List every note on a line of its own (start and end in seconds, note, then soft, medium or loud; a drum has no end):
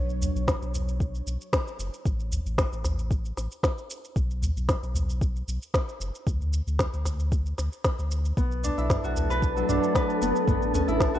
0.00 0.30 B1 loud
0.10 shaker soft
0.21 udu medium
0.21 shaker medium
0.35 0.55 B1 medium
0.35 shaker soft
0.48 kick loud
0.48 snare medium
0.48 shaker soft
0.62 1.22 B1 medium
0.62 shaker soft
0.75 udu medium
0.75 shaker medium
0.89 shaker soft
1.00 kick medium
1.00 shaker soft
1.15 shaker soft
1.27 1.37 B1 medium
1.27 shaker medium
1.41 shaker soft
1.53 kick loud
1.53 snare loud
1.53 shaker soft
1.68 shaker soft
1.79 1.90 F#1 loud
1.79 shaker medium
1.94 shaker soft
2.05 2.40 A1 medium
2.05 kick loud
2.05 shaker soft
2.20 shaker soft
2.32 udu medium
2.32 shaker medium
2.46 2.65 A1 medium
2.46 shaker soft
2.58 kick loud
2.58 snare medium
2.58 shaker soft
2.72 3.32 A1 medium
2.72 shaker soft
2.84 snare soft
2.84 udu loud
2.84 shaker medium
2.99 shaker soft
3.11 kick loud
3.11 shaker soft
3.25 shaker soft
3.37 3.48 A1 medium
3.37 snare soft
3.37 shaker medium
3.52 shaker soft
3.63 kick loud
3.63 snare loud
3.63 shaker soft
3.78 shaker soft
3.90 shaker medium
4.04 shaker soft
4.16 4.51 B1 medium
4.16 kick loud
4.16 shaker soft
4.31 shaker soft
4.42 udu loud
4.42 shaker medium
4.57 4.76 B1 medium
4.57 shaker soft
4.69 kick loud
4.69 snare loud
4.69 shaker soft
4.83 5.43 B1 medium
4.83 shaker soft
4.94 udu medium
4.94 shaker medium
5.10 shaker soft
5.21 kick loud
5.21 shaker soft
5.36 shaker soft
5.48 5.58 B1 medium
5.48 shaker medium
5.62 shaker soft
5.74 kick loud
5.74 snare loud
5.74 shaker soft
5.89 shaker soft
6.00 6.11 F#1 medium
6.00 shaker medium
6.15 shaker soft
6.27 6.61 D2 loud
6.27 kick loud
6.27 shaker soft
6.41 udu medium
6.41 shaker soft
6.53 udu medium
6.53 shaker medium
6.67 6.86 D2 medium
6.67 shaker soft
6.79 kick loud
6.79 snare medium
6.79 shaker soft
6.93 7.53 D2 medium
6.93 shaker soft
7.05 snare soft
7.05 udu medium
7.05 shaker medium
7.20 shaker soft
7.32 kick loud
7.32 shaker soft
7.46 shaker soft
7.58 7.69 D2 medium
7.58 snare soft
7.58 shaker medium
7.72 shaker soft
7.84 kick loud
7.84 snare loud
7.84 shaker soft
7.99 8.32 D2 medium
7.99 shaker soft
8.11 shaker medium
8.25 shaker soft
8.37 8.72 B1 medium
8.37 10.46 A3 medium
8.37 10.21 B3 medium
8.37 10.46 D4 medium
8.37 11.19 A4 medium
8.37 10.45 B4 medium
8.37 kick loud
8.37 shaker soft
8.52 shaker soft
8.64 9.68 D4 medium
8.64 udu medium
8.64 shaker medium
8.78 8.97 B1 medium
8.78 10.87 E4 medium
8.78 shaker soft
8.90 kick loud
8.90 snare medium
8.90 mid tom medium
8.90 shaker soft
9.04 9.64 B1 medium
9.04 11.14 F#4 medium
9.04 shaker soft
9.16 udu medium
9.16 shaker medium
9.30 9.95 B4 medium
9.30 shaker soft
9.42 kick loud
9.42 shaker soft
9.56 10.53 F#3 medium
9.56 shaker soft
9.69 9.79 B1 medium
9.69 10.80 D4 medium
9.69 mid tom medium
9.69 shaker medium
9.83 shaker soft
9.95 11.19 B4 medium
9.95 kick loud
9.95 snare loud
9.95 shaker soft
10.10 shaker soft
10.21 10.32 F#1 medium
10.21 10.47 B3 medium
10.21 shaker medium
10.36 shaker soft
10.47 10.82 A1 loud
10.47 11.19 B3 medium
10.47 11.19 C#4 medium
10.47 11.19 A4 medium
10.47 kick loud
10.47 mid tom medium
10.47 shaker soft
10.62 shaker soft
10.74 11.19 C#4 medium
10.74 udu medium
10.74 shaker medium
10.88 11.07 A1 medium
10.88 11.19 E4 medium
10.88 shaker soft
11.00 kick loud
11.00 snare medium
11.00 shaker soft
11.14 11.19 A1 medium
11.14 11.19 F#4 medium
11.14 shaker soft